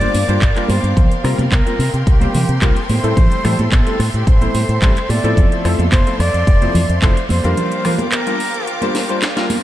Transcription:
Already playing: string section A#4 F5 G5 D6, flute D5
0.01 electric grand piano G3 A#3 D4 F4 C5, closed hi-hat, high conga
0.14 fingered electric bass G2, open hi-hat
0.28 fingered electric bass G2, electric grand piano G3 A#3 D4 F4 C5, closed hi-hat
0.42 fingered electric bass G1, kick, clap, closed hi-hat
0.55 electric grand piano G3 A#3 D4 F4 A#4, clap, closed hi-hat
0.69 fingered electric bass G2, flute C5, open hi-hat, high conga
0.83 fingered electric bass G2, closed hi-hat
0.97 fingered electric bass C2, string section C6, kick, closed hi-hat, low conga
1.12 closed hi-hat
1.24 fingered electric bass C3, electric grand piano G3 A#3 C4 F4 A#4, cross-stick, open hi-hat
1.38 fingered electric bass C3, closed hi-hat, high conga
1.52 fingered electric bass C2, flute A#4, kick, cross-stick, clap, closed hi-hat
1.66 electric grand piano G3 A#3 C4 F4 A#4, closed hi-hat
1.79 fingered electric bass C3, open hi-hat
1.94 fingered electric bass C3, flute G4, closed hi-hat
2.07 fingered electric bass C2, flute G4, kick, closed hi-hat
2.21 electric grand piano G3 A#3 C4 F4 C5, closed hi-hat, high conga
2.34 fingered electric bass C3, open hi-hat, low conga
2.49 fingered electric bass C3, closed hi-hat
2.62 fingered electric bass C2, electric grand piano G3 A#3 C4 F4 A#4, kick, clap, closed hi-hat
2.77 closed hi-hat
2.89 fingered electric bass A2, string section A4 E5, flute C5, open hi-hat, high conga
3.03 fingered electric bass A2, electric grand piano G3 A3 C4 E4 A4, closed hi-hat
3.17 fingered electric bass A1, kick, closed hi-hat, low conga
3.32 closed hi-hat
3.44 fingered electric bass A2, electric grand piano G3 A3 C4 E4 A4, cross-stick, open hi-hat, low conga
3.59 fingered electric bass A2, closed hi-hat, high conga
3.72 fingered electric bass A1, flute A4, kick, cross-stick, clap, closed hi-hat
3.86 electric grand piano G3 A3 C4 E4 A4, closed hi-hat
3.99 fingered electric bass A2, cross-stick, open hi-hat
4.14 fingered electric bass A2, flute G4, closed hi-hat
4.27 fingered electric bass A1, flute C5, kick, closed hi-hat
4.41 electric grand piano G3 A3 C4 E4 C5, closed hi-hat, high conga
4.55 fingered electric bass A2, open hi-hat
4.69 fingered electric bass A2, closed hi-hat
4.82 fingered electric bass A1, electric grand piano G3 A3 C4 E4 A4, kick, clap, closed hi-hat
4.96 clap, closed hi-hat
5.09 fingered electric bass A2, flute D5, open hi-hat, high conga
5.24 fingered electric bass A2, electric grand piano F3 A3 C4 E4 A4, closed hi-hat
5.37 fingered electric bass F1, string section F5 C6, kick, closed hi-hat, low conga
5.52 closed hi-hat
5.65 fingered electric bass F2, electric grand piano F3 A3 C4 E4 A4, cross-stick, open hi-hat
5.79 fingered electric bass F2, closed hi-hat, high conga
5.92 fingered electric bass F1, flute C5, kick, cross-stick, clap, closed hi-hat
6.06 electric grand piano F3 A3 C4 E4 A4, closed hi-hat
6.19 fingered electric bass F2, flute D5, cross-stick, open hi-hat
6.34 fingered electric bass F2, closed hi-hat
6.47 fingered electric bass F1, kick, closed hi-hat
6.61 electric grand piano F3 A3 C4 E4 C5, closed hi-hat, high conga
6.74 fingered electric bass F2, open hi-hat, low conga
6.89 fingered electric bass F2, closed hi-hat
7.02 fingered electric bass F1, electric grand piano F3 A3 C4 E4 A4, flute C5, kick, clap, closed hi-hat
7.17 closed hi-hat
7.29 fingered electric bass F2, flute C5, open hi-hat, high conga
7.44 fingered electric bass F2, electric grand piano G3 A#3 D4 F4 A#4, closed hi-hat
7.57 string section A#4 F5 G5 D6, closed hi-hat, low conga
7.72 closed hi-hat
7.85 electric grand piano G3 A#3 D4 F4 A#4, cross-stick, open hi-hat, low conga
7.99 closed hi-hat, high conga
8.12 flute A#4, cross-stick, clap, closed hi-hat
8.26 electric grand piano G3 A#3 D4 F4 A#4, closed hi-hat
8.40 open hi-hat
8.54 closed hi-hat
8.67 flute F4, closed hi-hat
8.81 electric grand piano G3 A#3 D4 F4 C5, closed hi-hat, high conga
8.95 snare, open hi-hat
9.09 electric grand piano G3 A#3 D4 F4 C5, closed hi-hat
9.22 snare, clap, closed hi-hat
9.36 electric grand piano G3 A#3 D4 F4 A#4, snare, closed hi-hat
9.50 open hi-hat, high conga

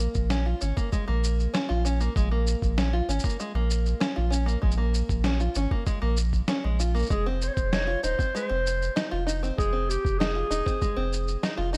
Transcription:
Already playing: five-string banjo A#3
0.14 sub bass A#1, kick, shaker
0.30 five-string banjo C#4, snare, shaker
0.46 five-string banjo F4
0.61 sub bass G#1, five-string banjo C#4, shaker
0.77 five-string banjo A#3, kick, shaker
0.92 five-string banjo G#3, kick, shaker
1.08 sub bass A#1, five-string banjo A#3
1.24 shaker
1.40 shaker
1.54 five-string banjo C#4, snare, shaker
1.69 sub bass A#1, five-string banjo F4
1.85 five-string banjo C#4, shaker
2.00 five-string banjo A#3, shaker
2.16 sub bass A#1, five-string banjo G#3, kick, shaker
2.31 five-string banjo A#3
2.47 shaker
2.62 sub bass A#1, kick, shaker
2.78 five-string banjo C#4, snare, shaker
2.93 five-string banjo F4
3.09 sub bass G#1, five-string banjo C#4, shaker
3.19 shaker
3.24 five-string banjo A#3, kick, shaker
3.29 shaker
3.40 five-string banjo G#3, shaker
3.55 sub bass A#1, five-string banjo A#3
3.70 shaker
3.86 shaker
4.00 five-string banjo C#4, snare, shaker
4.16 sub bass A#1, five-string banjo F4
4.30 five-string banjo C#4, shaker
4.46 five-string banjo A#3, shaker
4.62 sub bass A#1, five-string banjo G#3, kick
4.71 shaker
4.78 five-string banjo A#3
4.94 shaker
5.09 sub bass A#1, kick, shaker
5.24 five-string banjo C#4, snare, shaker
5.40 five-string banjo F4, shaker
5.55 sub bass G#1, five-string banjo C#4, shaker
5.71 five-string banjo A#3, kick
5.86 five-string banjo G#3, kick, shaker
6.02 sub bass A#1, five-string banjo A#3
6.17 shaker
6.33 kick, shaker
6.48 five-string banjo C#4, snare, shaker
6.64 sub bass A#1, five-string banjo G#3
6.80 five-string banjo F4, shaker
6.95 five-string banjo A#3, shaker
6.99 shaker
7.02 shaker
7.06 shaker
7.10 sub bass F1, five-string banjo G#3, clarinet G#4, kick, shaker
7.26 five-string banjo C4
7.42 clarinet C5, shaker
7.48 clarinet C#5
7.54 sub bass F1, clarinet C5, kick, shaker
7.72 five-string banjo D#4, clarinet C#5, snare, shaker
7.87 five-string banjo F4
8.03 sub bass D#1, five-string banjo D#4, clarinet C5, shaker
8.19 five-string banjo C4, kick, shaker
8.35 five-string banjo G#3, clarinet C5, shaker
8.49 sub bass F1, five-string banjo C4
8.67 shaker
8.82 shaker
8.96 five-string banjo D#4, snare, shaker
9.11 sub bass F1, five-string banjo F4
9.27 five-string banjo D#4, shaker
9.43 five-string banjo C4, shaker
9.58 sub bass F1, five-string banjo G#3, clarinet G#4, kick, shaker
9.73 five-string banjo C4
9.89 clarinet G4, shaker
10.05 sub bass F1, kick, shaker
10.18 five-string banjo D#4, clarinet G#4, snare, shaker
10.35 five-string banjo F4
10.51 sub bass D#1, five-string banjo D#4, shaker
10.66 five-string banjo C4, kick, shaker
10.82 five-string banjo G#3, kick, shaker
10.96 sub bass F1, five-string banjo C4
11.13 shaker
11.28 shaker
11.43 five-string banjo D#4, snare, shaker
11.58 sub bass F1, five-string banjo F4
11.73 five-string banjo D#4, shaker

